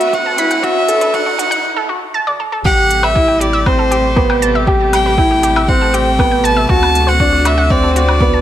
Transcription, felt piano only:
Already playing: F#4
0.38 E4
0.63 F#4
0.89 A4
2.65 G4
3.16 E4
3.66 C4
4.16 B3
4.67 G4
5.18 E4
5.69 C4
6.19 B3
6.70 F#4
7.21 D4
7.71 C4
8.21 B3

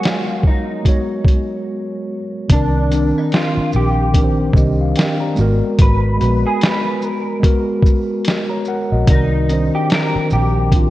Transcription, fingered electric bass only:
2.50 C2
3.57 muted fingered electric bass stroke
3.74 A#1
4.54 C2
5.39 G#1
5.80 G#1
6.21 A#1
8.92 A#1
9.08 C2
10.15 muted fingered electric bass stroke
10.32 A#1

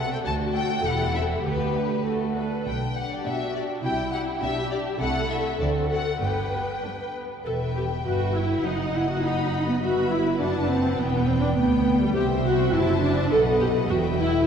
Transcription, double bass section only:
Already playing: C2
0.25 D2
0.84 E1
1.45 D2
2.66 B1
3.84 C2
4.42 B1
5.01 C2
5.60 D2
6.21 G1
7.45 E1
8.05 G1
8.64 F#1
9.82 G1
10.41 F#1
10.99 E1
11.57 D2
12.15 C2
12.74 F#1
13.32 B1
13.90 E1

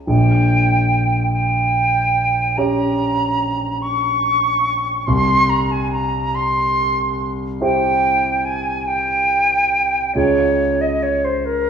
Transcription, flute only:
0.07 G5
1.33 G5
2.57 A#5
3.82 C#6
5.06 C6
5.49 A#5
5.71 G#5
5.92 A#5
6.35 C6
7.61 G5
8.45 G#5
8.87 G5
10.16 C#5
10.81 D#5
11.03 C#5
11.24 C5
11.45 A#4

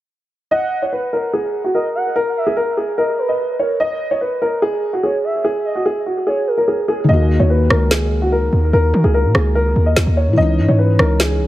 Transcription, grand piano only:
0.51 D#5
0.82 C#5
0.92 B4
1.13 A#4
1.33 G#4
1.64 F#4
1.75 A#4
2.16 A#4
2.47 G#4
2.57 A#4
2.77 G#4
2.98 A#4
3.29 D#5
3.59 C#5
3.80 D#5
4.11 C#5
4.21 B4
4.42 A#4
4.62 G#4
4.93 F#4
5.03 G#4
5.44 G#4
5.75 F#4
5.86 G#4
6.06 F#4
6.27 G#4
6.58 A#4
6.68 G#4
6.88 G#4
7.09 D#5
7.40 C#5
7.50 B4
7.70 A#4
7.91 G#4
8.22 F#4
8.32 A#4
8.73 A#4
9.04 G#4
9.14 A#4
9.35 G#4
9.55 A#4
9.86 D#5
10.17 C#5
10.37 D#5
10.68 C#5
10.79 B4
10.99 A#4
11.20 G#4

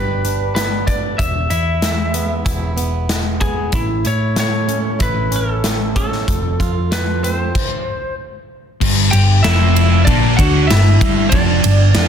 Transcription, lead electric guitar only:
Already playing: B4
0.55 B4
0.87 D5
1.18 E5
1.50 E5
3.42 G#4
3.75 E4
4.07 C#5
4.40 C#5
5.02 B4
5.36 A4
5.97 A4
6.93 B4
7.24 C5
9.11 G4 G5
9.43 E4 E5
10.05 D4 D5
10.37 F#4 F#5
10.67 E4 E5
11.29 D4 D5

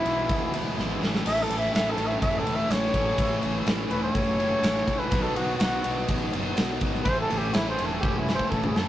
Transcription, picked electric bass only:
0.05 B1
0.30 D2
0.78 G#1
1.02 A1
1.26 A1
1.49 A1
1.73 A1
1.96 A1
2.22 F#1
2.45 E1
2.69 A1
2.94 A1
3.19 A1
3.40 A1
3.65 A1
3.90 E1
4.15 F#1
4.63 A1
4.87 C#2
5.12 B1
5.36 B1
5.61 B1
5.85 B1
6.09 A1
6.35 F#1
6.59 B1
6.82 G#1
7.06 A1
7.31 A1
7.56 A1
7.80 E1
8.03 F#1
8.52 A1
8.77 F#2

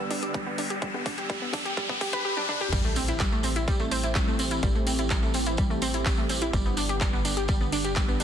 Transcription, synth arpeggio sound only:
0.10 D4
0.23 G4
0.34 G3
0.46 B3
0.58 D4
0.70 G4
0.82 G3
0.94 B3
1.06 D4
1.18 G4
1.30 G3
1.42 B3
1.53 D4
1.65 G4
1.77 G3
1.89 B3
2.01 G4
2.13 B4
2.25 G4
2.37 D4
2.49 D4
2.61 G4
2.72 G3
2.85 A3
2.96 C4
3.08 E4
3.20 G3
3.32 A3
3.44 C4
3.56 E4
3.68 G3
3.80 A3
3.91 C4
4.04 E4
4.15 G3
4.27 A3
4.39 C4
4.51 E4
4.63 G3
4.75 A3
4.87 C4
4.99 E4
5.11 G3
5.23 A3
5.34 C4
5.47 E4
5.58 G3
5.70 A3
5.82 C4
5.94 E4
6.06 G3
6.18 A3
6.30 C4
6.42 E4
6.53 G3
6.66 B3
6.77 D4
6.89 G4
7.01 G3
7.13 B3
7.25 D4
7.37 G4
7.49 G3
7.61 B3
7.72 D4
7.85 G4
7.96 G3
8.08 B3
8.20 D4

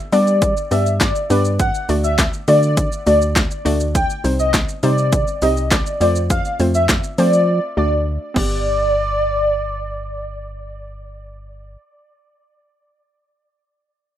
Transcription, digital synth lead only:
0.13 D5
0.72 E5
1.01 D5
1.31 D5
1.60 F#5
2.04 E5
2.48 D5
3.07 D5
3.95 G5
4.39 D#5
4.83 D5
5.42 D#5
5.72 D5
6.01 D5
6.30 F5
6.75 E5
7.19 D5
7.78 D5
8.36 D5

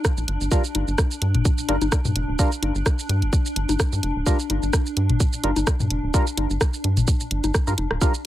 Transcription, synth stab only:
0.51 G3 D4 F4 A#4
1.69 G3 D4 F4 A#4
2.39 G3 D4 F4 A#4
4.26 G3 D4 F4 A#4
5.44 G3 D4 F4 A#4
6.14 G3 D4 F4 A#4
7.67 G3 D4 F4 A#4
8.01 G3 D4 F4 A#4

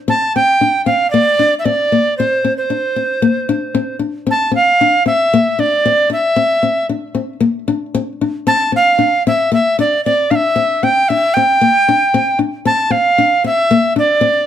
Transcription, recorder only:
0.09 A5
0.36 G5
0.86 F5
1.11 D5
1.59 E5
1.65 D5
2.18 C5
2.57 C5
4.31 A5
4.55 F5
5.07 E5
5.60 D5
6.13 E5
8.47 A5
8.76 F5
9.27 E5
9.54 E5
9.80 D5
10.05 D5
10.31 F5
10.35 E5
10.83 G5
11.09 E5
11.34 G5
12.66 A5
12.91 F5
13.46 E5
13.98 D5

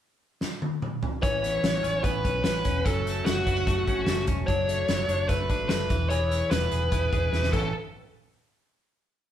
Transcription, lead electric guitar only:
1.23 C#5
2.04 B4
2.44 B4
2.85 A4
3.26 F#4
4.47 C#5
5.29 B4
5.70 B4
6.10 C#5
6.51 B4
7.53 A4

